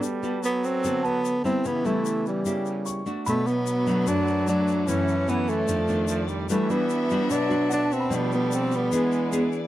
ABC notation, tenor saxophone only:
X:1
M:4/4
L:1/8
Q:1/4=149
K:Bphr
V:1 name="Tenor saxophone"
z2 B, C2 B,2 C | B, A,2 G,4 z | A, B,3 D2 D2 | ^C2 B, A,4 z |
A, B,3 D2 D C | B, B, C B,4 z |]